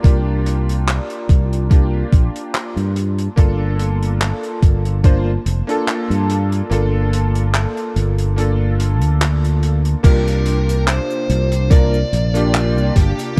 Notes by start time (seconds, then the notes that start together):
Already playing: F4 D5 A#5
0.03 C2 A#3 D4 F4 G4, kick, closed hi-hat
0.46 closed hi-hat
0.69 closed hi-hat
0.88 clap, closed hi-hat
1.10 closed hi-hat
1.29 C2, kick, closed hi-hat
1.53 closed hi-hat
1.70 A#3 D4 F4 G4, kick, closed hi-hat
2.13 A#1, kick, closed hi-hat
2.36 closed hi-hat
2.55 clap, closed hi-hat
2.76 G2, closed hi-hat
2.96 A#3 A5, closed hi-hat
3.19 closed hi-hat
3.36 G1 A#3 D4 F4 A4, kick, closed hi-hat
3.79 closed hi-hat
4.03 closed hi-hat
4.21 clap, closed hi-hat
4.43 closed hi-hat
4.63 G1, kick, closed hi-hat
4.85 closed hi-hat
5.04 A#3 D4 F4 C5, kick, closed hi-hat
5.46 F1, closed hi-hat
5.67 A#3 D4 F4 A4, closed hi-hat
5.88 clap, closed hi-hat
6.10 G2, closed hi-hat
6.30 closed hi-hat
6.52 closed hi-hat
6.70 G1 A#3 D4 F4 A4, closed hi-hat
7.13 closed hi-hat
7.35 closed hi-hat
7.54 clap, closed hi-hat
7.77 closed hi-hat
7.96 G1, closed hi-hat
8.18 closed hi-hat
8.36 A#3 D4 F4 A4, closed hi-hat
8.80 closed hi-hat
9.02 D2, closed hi-hat
9.21 clap, closed hi-hat
9.45 closed hi-hat
9.63 closed hi-hat
9.85 closed hi-hat
10.03 C2 C3 A#3 D4 F4 G4 A#4, kick, closed hi-hat, crash, cabasa
10.28 closed hi-hat, cabasa
10.46 closed hi-hat
10.69 closed hi-hat, cabasa
10.88 C5, clap, closed hi-hat, cabasa
11.10 cabasa
11.29 C2, closed hi-hat
11.52 closed hi-hat, cabasa
11.70 A#3 D4 F4 A#4 D5, kick, closed hi-hat, cabasa
11.94 cabasa
12.13 A#1, closed hi-hat
12.34 A#3 D4 F4 G4, closed hi-hat, cabasa
12.54 clap, closed hi-hat, cabasa
12.77 C2, cabasa
12.96 G1 G4, kick, closed hi-hat
13.19 closed hi-hat, cabasa
13.36 A#3